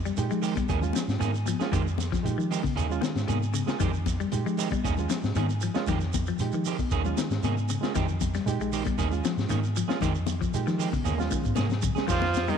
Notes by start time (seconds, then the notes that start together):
0.05 G3, closed hi-hat, shekere
0.17 A#2 G#3 D#4 G4, muted clean electric guitar stroke, closed hi-hat, shekere
0.31 F3 G#3, shekere
0.42 D#3 G#3 C4 G4, open hi-hat, shekere
0.56 G3, muted clean electric guitar stroke, kick, closed hi-hat, high conga, shekere
0.69 D#2 D#3 A#3 C#4 G#4, kick, closed hi-hat, shekere
0.81 G#3 C#4 F4, muted clean electric guitar stroke, closed hi-hat, low conga, shekere
0.93 F3, muted clean electric guitar stroke, snare, closed hi-hat, high conga, shekere
1.08 G#2, snare, closed hi-hat, shekere
1.19 G#2 D#3 A#3 C#4 G#4, muted clean electric guitar stroke, closed hi-hat, high conga, shekere
1.34 muted clean electric guitar stroke, closed hi-hat, shekere
1.46 F3, muted clean electric guitar stroke, closed hi-hat, high conga, shekere
1.59 G#3 A#3 C#4 F4 G#4, muted fingered electric bass stroke, snare, closed hi-hat, shekere
1.72 F2 D#3 G#3 C4 G4, kick, closed hi-hat, low conga, shekere
1.85 muted clean electric guitar stroke, high conga, shekere
1.98 muted clean electric guitar stroke, snare, closed hi-hat, high conga, low conga, shekere
2.12 F3, kick, snare, closed hi-hat, shekere
2.23 A#2 G#3 D#4 G4, muted clean electric guitar stroke, closed hi-hat, high conga, shekere
2.38 D#3 F3, shekere
2.51 D#3 G#3 C4 G4, open hi-hat, shekere
2.63 C#3, muted clean electric guitar stroke, kick, high conga, shekere
2.76 D#2 D#3 A#3 C#4 G#4, closed hi-hat, high conga, shekere
2.89 G#3 C#4 F4, muted clean electric guitar stroke, shekere
3.01 D#3, muted clean electric guitar stroke, snare, closed hi-hat, high conga, shekere
3.15 G#2, snare, closed hi-hat, shekere
3.27 G#2 C3 D#3 A#3 C#4 G#4, closed hi-hat, high conga, shekere
3.41 muted clean electric guitar stroke, shekere
3.54 C#3, muted clean electric guitar stroke, closed hi-hat, high conga, shekere
3.66 G#3 A#3 C#4 F4 G#4, muted fingered electric bass stroke, snare, closed hi-hat, shekere
3.80 F2 D#3 G#3 C4 G4, kick, closed hi-hat, low conga, shekere
3.94 muted clean electric guitar stroke, high conga, shekere
4.06 muted clean electric guitar stroke, kick, snare, closed hi-hat, high conga, low conga, shekere
4.20 G3, closed hi-hat, shekere
4.32 A#2 G#3 D#4 G4, muted clean electric guitar stroke, closed hi-hat, shekere
4.46 F3 G#3, shekere
4.57 D#3 G#3 C4 G4, open hi-hat, shekere
4.71 G3, muted clean electric guitar stroke, kick, closed hi-hat, high conga, shekere
4.84 D#2 D#3 A#3 C#4 G#4, kick, closed hi-hat, high conga, shekere
4.97 G#3 C#4 F4, muted clean electric guitar stroke, closed hi-hat, low conga, shekere
5.10 F3, muted clean electric guitar stroke, snare, closed hi-hat, high conga, shekere
5.23 G#2, snare, closed hi-hat, shekere
5.35 G#2 D#3 A#3 C#4 G#4, closed hi-hat, high conga, shekere
5.49 muted clean electric guitar stroke, closed hi-hat, shekere
5.61 F3, muted clean electric guitar stroke, closed hi-hat, shekere
5.74 G#3 A#3 C#4 F4 G#4, muted fingered electric bass stroke, snare, closed hi-hat, shekere
5.87 F2 D#3 G#3 C4 G4, kick, snare, closed hi-hat, low conga, shekere
6.00 muted clean electric guitar stroke, snare, high conga, shekere
6.13 muted clean electric guitar stroke, kick, closed hi-hat, high conga, low conga, shekere
6.26 F3, closed hi-hat, shekere
6.39 A#2 G#3 D#4 G4, muted clean electric guitar stroke, closed hi-hat, high conga, shekere
6.52 D#3 F3, shekere
6.65 D#3 G#3 C4 G4, open hi-hat, shekere
6.79 muted clean electric guitar stroke, kick, high conga, shekere
6.91 D#2 D#3 A#3 C#4 G#4, kick, closed hi-hat, shekere
7.04 G#3 C#4 F4, muted clean electric guitar stroke, low conga, shekere
7.17 D#3, muted clean electric guitar stroke, snare, closed hi-hat, high conga, shekere
7.30 G#2, snare, closed hi-hat, shekere
7.43 G#2 C3 D#3 A#3 C#4 G#4, closed hi-hat, high conga, shekere
7.57 muted clean electric guitar stroke, shekere
7.69 C#3, muted clean electric guitar stroke, closed hi-hat, shekere
7.81 G#3 A#3 C#4 F4 G#4, muted fingered electric bass stroke, snare, closed hi-hat, shekere
7.95 F2 D#3 G#3 C4 G4, kick, closed hi-hat, low conga, shekere
8.08 muted clean electric guitar stroke, high conga, shekere
8.21 muted clean electric guitar stroke, kick, closed hi-hat, high conga, low conga, shekere
8.34 G3, snare, closed hi-hat, shekere
8.46 A#2 G#3 D#4 G4, muted clean electric guitar stroke, closed hi-hat, high conga, shekere
8.59 A#1 G#3, shekere
8.72 D#3 G#3 C4 G4, open hi-hat, shekere
8.85 G3, muted clean electric guitar stroke, kick, closed hi-hat, high conga, shekere
8.98 D#2 D#3 A#3 C#4 G#4, kick, closed hi-hat, high conga, shekere
9.10 G#3 C#4 F4, muted clean electric guitar stroke, closed hi-hat, shekere
9.23 F3, muted clean electric guitar stroke, snare, closed hi-hat, high conga, shekere
9.37 G#2, snare, closed hi-hat, shekere
9.49 G#2 D#3 A#3 C#4 G#4, closed hi-hat, high conga, shekere
9.62 muted clean electric guitar stroke, closed hi-hat, shekere
9.76 F3, muted clean electric guitar stroke, closed hi-hat, shekere
9.88 G#3 A#3 C#4 F4 G#4, muted fingered electric bass stroke, snare, closed hi-hat, shekere
10.01 F2 D#3 G#3 C4 G4, kick, closed hi-hat, low conga, shekere
10.15 muted clean electric guitar stroke, high conga, shekere
10.27 muted clean electric guitar stroke, closed hi-hat, high conga, low conga, shekere
10.41 F3, kick, closed hi-hat, shekere
10.53 A#2 G#3 D#4 G4, muted clean electric guitar stroke, closed hi-hat, high conga, shekere
10.67 D#3 F3, snare, shekere
10.78 D#3 G#3 C4 G4, open hi-hat, shekere
10.91 C#3, muted clean electric guitar stroke, kick, high conga, shekere
11.04 D#2 A#3 C#4 G#4, high tom, shekere
11.17 G#3 C#4 F4, muted clean electric guitar stroke, snare, low conga, shekere
11.29 D#3, muted clean electric guitar stroke, kick, high conga, shekere
11.44 G#2, kick, high conga, shekere
11.55 G#2 C3 A#3 C#4 G#4, snare, high conga, shekere
11.69 muted clean electric guitar stroke, snare, low conga, shekere
11.82 C#3, muted clean electric guitar stroke, kick, low conga, shekere
11.95 G#3 C#4 G#4, snare, low conga, shekere
12.07 F2 D#3 F3 G#3 C4 F4 G4, muted clean electric guitar stroke, kick, crash, low conga, shekere
12.22 snare, high conga
12.34 muted clean electric guitar stroke, snare, closed hi-hat, shekere
12.47 D#3 G3 G#3 C4 D#4 G4, closed hi-hat, high conga, shekere